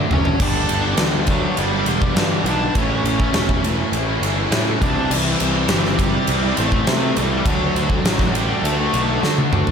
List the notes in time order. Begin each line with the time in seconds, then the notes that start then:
Already playing: D3 A3 D4
0.10 F#1 D3 F#3 A3 C#4 D4 C#5, floor tom
0.25 muted distorted electric guitar stroke, floor tom
0.39 G1 G2 D3 G3 B3 D4 D5, kick, splash, crash
0.69 G1 D3 G3 B3 D4, ride
0.84 G3 B3 D4
0.97 D2 G2 D3 E3 G3 B3 D4 E4, snare, ride
1.14 G3 B3 D4
1.27 G2 D3 F#3 G3 B3 D4, muted overdriven electric guitar stroke, kick, ride
1.31 F#4
1.43 G3 B3 D4, muted distorted electric guitar stroke
1.57 G1 G3 G4, ride
1.72 G3 B3 D4
1.86 E1 D3 G3 B3 D4, ride
2.01 G3 B3 D4, kick
2.15 G2 D3 E3 G3 B3 D4, snare, ride
2.19 E4
2.31 G3 B3 D4
2.44 B1 D3 G3 B3 D4 D5, ride
2.61 muted distorted electric guitar stroke
2.75 A1 A2 E3 A3 C#4 E4 C#5, kick, ride
3.04 A1 E3 A3 C#4 E4, ride
3.19 A3 C#4 E4, kick
3.33 E1 A2 E3 A3 C#4 E4, snare, ride
3.48 A3 C#4 E4, kick
3.64 A2 E3 A3 C#4 E4, muted overdriven electric guitar stroke, ride
3.78 A3 C#4 E4, muted distorted electric guitar stroke
3.92 A1, ride
4.08 A3 C#4 E4
4.20 G1 E3 A3, ride
4.25 C#4 E4
4.38 A3 C#4 E4
4.51 A2 E3 A3 C#4 E4, snare, ride
4.68 A3 C#4 E4
4.82 C2 C3 E3 G3 C4 D4 E4 D5, kick, ride
4.97 muted distorted electric guitar stroke
5.10 C2 C3 E3 G3 C4 E4, crash
5.15 E3 E4
5.40 C2 E3 G3 C4 E4, ride
5.55 G3 C4 E4
5.68 G1 C3 E3 G3 C4 E4, snare, ride
5.84 G3 C4 E4, snare
5.99 E3 G3 C4 E4 G4, muted overdriven electric guitar stroke, kick, ride
6.14 G3 C4 E4, muted distorted electric guitar stroke
6.27 C2, ride
6.43 G3 C4 E4
6.57 A1 C3 E3 G3 A3 C4 E4, ride
6.62 A4
6.71 G3 C4 E4, kick
6.87 C3 E3 G3 C4 E4, snare, ride
6.91 A3 A4
7.02 G3 C4 E4
7.15 C2 E3 G3 C4 E4, ride
7.20 G3 G4
7.32 muted distorted electric guitar stroke
7.45 D2 D3 F#3 A3 D4 F#4, kick, ride
7.50 F#4
7.76 D2 D3 A3 D4 F#4, ride
7.90 A3 D4 F#4, kick
8.04 A1 D3 A3 D4 F#4, snare, ride
8.19 A3 D4 F#4, kick, snare
8.34 D3 G3 A3 D4 F#4 G4, muted overdriven electric guitar stroke, ride
8.49 A3 D4 F#4, muted distorted electric guitar stroke
8.63 D2 A3 A4, ride
8.80 A3 D4 F#4
8.94 B1 D3 A3 D4 F#4, ride
9.07 A3 D4 F#4
9.23 D3 A3 D4 F#4, snare
9.38 A3 D4 F#4, high tom
9.52 D2 D3 A3 D4 F#4, mid tom
9.67 muted distorted electric guitar stroke, floor tom